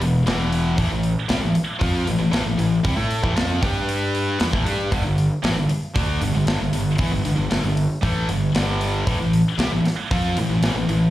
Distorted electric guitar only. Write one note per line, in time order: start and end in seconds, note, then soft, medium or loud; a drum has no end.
0.00 0.21 E2 medium
0.00 0.21 B2 medium
0.26 0.78 E2 medium
0.26 0.77 B2 medium
0.26 0.77 E3 loud
0.78 0.90 A2 medium
0.78 0.90 E3 medium
0.91 1.12 A2 medium
0.91 1.12 E3 medium
1.29 1.41 C3 medium
1.29 1.41 G3 loud
1.41 1.53 A2 medium
1.41 1.55 E3 medium
1.54 muted distorted electric guitar stroke medium
1.79 2.05 F3 loud
1.79 2.06 C4 medium
1.79 2.06 F4 loud
2.06 2.17 A2 medium
2.06 2.18 E3 medium
2.19 2.30 A2 medium
2.19 2.31 E3 medium
2.31 2.44 A2 medium
2.31 2.44 E3 medium
2.45 2.56 A2 medium
2.45 2.57 E3 medium
2.57 2.79 A2 soft
2.57 2.79 E3 medium
2.83 2.97 C3 medium
2.83 2.96 G3 loud
2.96 3.22 A3 medium
2.96 3.23 E4 medium
2.96 3.23 A4 medium
3.22 3.35 A2 medium
3.22 3.35 E3 medium
3.36 3.61 F3 medium
3.36 3.61 C4 loud
3.36 3.62 F4 loud
3.62 4.39 G3 medium
3.62 4.40 D4 medium
3.62 4.39 G4 medium
4.40 4.51 E3 medium
4.40 4.52 B3 loud
4.52 4.65 A2 medium
4.52 4.65 E3 medium
4.65 4.91 G3 medium
4.65 4.91 D4 medium
4.65 4.91 G4 medium
4.91 5.03 G2 medium
4.91 5.03 D3 medium
5.04 5.25 G2 medium
5.04 5.26 D3 medium
5.43 5.55 A2 loud
5.43 5.56 E3 loud
5.56 5.68 G2 medium
5.56 5.69 D3 medium
5.69 muted distorted electric guitar stroke medium
5.95 6.20 D3 medium
5.95 6.21 A3 loud
5.95 6.21 D4 loud
6.21 6.33 G2 medium
6.21 6.34 D3 medium
6.35 6.46 G2 medium
6.35 6.46 D3 medium
6.47 6.59 G2 medium
6.47 6.59 D3 medium
6.60 6.72 G2 medium
6.60 6.72 D3 medium
6.73 6.94 G2 medium
6.73 6.94 D3 medium
6.99 7.11 E3 medium
6.99 7.12 B3 medium
7.12 7.23 G2 medium
7.12 7.24 D3 medium
7.24 7.35 G2 medium
7.24 7.36 D3 medium
7.36 7.49 G2 medium
7.36 7.49 D3 medium
7.50 7.62 G2 loud
7.50 7.63 D3 loud
7.63 7.85 G2 medium
7.63 7.85 D3 medium
8.02 8.28 A2 medium
8.02 8.28 E3 medium
8.02 8.28 A3 loud
8.29 8.50 G2 medium
8.29 8.50 D3 medium
8.55 9.06 G2 medium
8.55 9.06 D3 medium
8.55 9.06 G3 medium
9.07 9.18 A2 medium
9.07 9.18 E3 medium
9.19 9.40 A2 medium
9.19 9.40 E3 medium
9.58 9.71 C3 medium
9.58 9.71 G3 loud
9.72 9.84 A2 medium
9.72 9.85 E3 medium
9.85 muted distorted electric guitar stroke medium
10.11 10.36 F3 medium
10.11 10.36 C4 loud
10.11 10.36 F4 loud
10.37 10.48 A2 medium
10.37 10.49 E3 medium
10.49 10.62 A2 medium
10.49 10.62 E3 medium
10.63 10.75 A2 medium
10.63 10.75 E3 medium
10.76 10.88 A2 medium
10.76 10.89 E3 medium
10.89 11.10 A2 medium
10.89 11.10 E3 medium